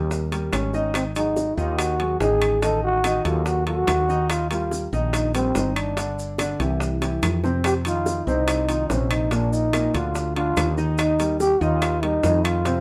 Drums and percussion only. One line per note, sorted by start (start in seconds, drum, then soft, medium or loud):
0.11 high bongo medium
0.11 maracas medium
0.32 high bongo soft
0.32 high timbale medium
0.32 maracas medium
0.53 high bongo medium
0.53 low bongo medium
0.53 high timbale medium
0.53 claves medium
0.53 maracas medium
0.73 high bongo soft
0.73 maracas soft
0.94 high bongo medium
0.94 high timbale medium
0.94 claves medium
0.94 maracas medium
1.16 high timbale medium
1.16 maracas medium
1.36 high bongo medium
1.36 maracas medium
1.58 maracas soft
1.78 high bongo medium
1.78 high timbale medium
1.78 claves medium
1.78 maracas medium
2.00 high timbale medium
2.21 high bongo medium
2.21 low bongo medium
2.21 maracas medium
2.42 high timbale medium
2.42 claves medium
2.42 maracas soft
2.62 high bongo medium
2.62 high timbale medium
2.62 maracas medium
3.04 high bongo medium
3.04 high timbale medium
3.04 claves medium
3.04 maracas medium
3.25 high bongo soft
3.25 high timbale medium
3.25 maracas soft
3.46 high bongo medium
3.46 maracas medium
3.67 high bongo soft
3.67 high timbale medium
3.87 high bongo medium
3.87 low bongo medium
3.87 high timbale medium
3.87 claves medium
3.87 maracas medium
4.09 high bongo soft
4.09 maracas soft
4.30 high bongo medium
4.30 high timbale medium
4.30 claves medium
4.30 maracas medium
4.51 high timbale medium
4.51 maracas medium
4.71 high bongo medium
4.71 maracas medium
4.93 maracas soft
5.13 high bongo medium
5.13 high timbale medium
5.13 claves medium
5.13 maracas medium
5.35 high timbale medium
5.35 maracas medium
5.55 high bongo medium
5.55 low bongo medium
5.55 low timbale medium
5.55 maracas medium
5.76 high timbale medium
5.76 claves medium
5.76 maracas soft
5.97 high bongo medium
5.97 high timbale medium
5.97 maracas medium
6.19 maracas medium
6.38 high bongo medium
6.38 high timbale medium
6.38 claves medium
6.38 maracas medium
6.60 high bongo soft
6.60 high timbale medium
6.60 maracas soft
6.80 high bongo medium
6.80 maracas medium
7.02 high bongo medium
7.02 high timbale medium
7.02 maracas medium
7.23 low bongo medium
7.23 high timbale medium
7.23 low timbale medium
7.23 claves medium
7.23 maracas medium
7.44 low bongo medium
7.44 maracas soft
7.64 high bongo medium
7.64 high timbale medium
7.64 claves medium
7.64 maracas medium
7.85 high timbale medium
7.85 maracas medium
8.06 high bongo medium
8.06 maracas medium
8.28 maracas soft
8.48 high bongo medium
8.48 high timbale medium
8.48 claves medium
8.48 maracas medium
8.69 high timbale medium
8.69 maracas medium
8.90 high bongo medium
8.90 low bongo medium
8.90 maracas medium
9.11 high timbale medium
9.11 claves medium
9.11 maracas soft
9.31 high bongo medium
9.31 high timbale medium
9.31 maracas medium
9.53 maracas medium
9.73 high bongo medium
9.73 high timbale medium
9.73 claves medium
9.73 maracas medium
9.94 high bongo soft
9.94 high timbale medium
9.94 maracas soft
10.15 high bongo medium
10.15 maracas medium
10.36 high bongo soft
10.36 high timbale medium
10.57 high bongo medium
10.57 low bongo medium
10.57 high timbale medium
10.57 low timbale medium
10.57 claves medium
10.57 maracas medium
10.78 high bongo soft
10.78 maracas soft
10.98 high bongo medium
10.98 high timbale medium
10.98 claves medium
10.98 maracas medium
11.20 high timbale medium
11.20 maracas medium
11.40 high bongo medium
11.40 maracas medium
11.62 maracas soft
11.82 high bongo medium
11.82 high timbale medium
11.82 claves medium
11.82 maracas medium
12.03 high timbale medium
12.23 high bongo medium
12.23 low bongo medium
12.23 low timbale medium
12.23 maracas medium
12.45 high timbale medium
12.45 claves medium
12.45 maracas soft
12.65 high bongo medium
12.65 high timbale medium
12.65 maracas medium